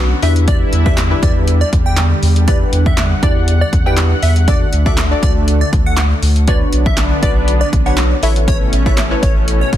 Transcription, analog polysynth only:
0.00 0.16 C#4 medium
0.00 0.17 D4 medium
0.00 0.17 F#4 medium
0.00 0.17 B4 medium
0.22 0.73 D4 medium
0.22 0.73 E4 medium
0.22 0.73 G4 medium
0.22 0.73 B4 medium
0.86 0.97 D4 medium
0.86 0.97 E4 medium
0.86 0.98 G4 medium
0.86 0.98 B4 medium
1.11 1.60 D4 medium
1.11 1.60 E4 medium
1.11 1.60 G4 medium
1.11 1.61 B4 medium
2.48 2.86 D4 medium
2.48 2.86 E4 medium
2.48 2.86 G4 medium
2.48 2.86 B4 medium
3.23 3.54 D4 medium
3.23 3.54 E4 medium
3.23 3.54 G4 medium
3.23 3.54 D5 medium
3.86 4.17 D4 medium
3.86 4.17 E4 medium
3.86 4.17 G4 medium
3.86 4.17 B4 medium
4.48 4.67 D4 medium
4.48 4.67 F#4 medium
4.48 4.67 A4 medium
4.48 4.67 D5 medium
4.86 4.98 D4 medium
4.86 4.98 F#4 medium
4.86 4.98 A4 medium
4.86 4.98 D5 medium
5.11 5.60 D4 medium
5.11 5.61 F#4 medium
5.11 5.61 A4 medium
5.11 5.61 D5 medium
6.48 6.86 D4 medium
6.48 6.86 F#4 medium
6.48 6.86 B4 medium
6.48 6.86 C#5 medium
7.23 7.54 D4 medium
7.23 7.54 F#4 medium
7.23 7.54 B4 medium
7.23 7.54 D5 medium
7.86 8.16 D4 medium
7.86 8.17 F#4 medium
7.86 8.17 B4 medium
7.86 8.17 C#5 medium
8.23 8.73 E4 medium
8.23 8.73 A4 medium
8.23 8.73 B4 medium
8.23 8.73 C#5 medium
8.86 8.98 E4 medium
8.86 8.98 A4 medium
8.86 8.98 B4 medium
8.86 8.98 C#5 medium
9.11 9.60 E4 medium
9.11 9.60 A4 medium
9.11 9.61 B4 medium
9.11 9.61 C#5 medium

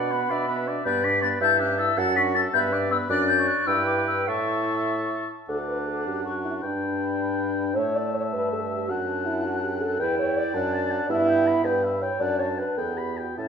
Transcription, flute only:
0.00 0.57 B5 loud
0.85 1.05 G6 loud
1.04 1.22 B6 loud
1.22 1.28 A6 loud
1.41 1.59 G6 loud
1.60 1.78 F#6 loud
1.79 1.99 E6 loud
1.97 2.15 A6 loud
2.16 2.22 B6 loud
2.35 2.41 A6 loud
2.53 2.59 G6 loud
2.72 2.78 F#6 loud
2.91 2.97 E6 loud
3.09 3.30 F#6 loud
3.28 3.49 G6 loud
3.47 3.68 F#6 loud
3.67 3.86 E6 loud
3.86 3.96 D6 medium
3.98 4.02 D6 medium
4.07 4.27 E6 medium
4.28 5.27 C#6 medium
5.49 6.21 D6 medium
6.25 6.64 C#6 medium
6.62 7.77 B5 medium
7.76 8.88 A5 medium
8.88 9.69 A5 medium
9.99 10.55 G5 medium
10.54 11.11 A5 medium
11.09 12.21 B5 medium
12.20 12.79 A5 medium
12.78 13.37 B5 medium
13.38 13.48 A5 soft

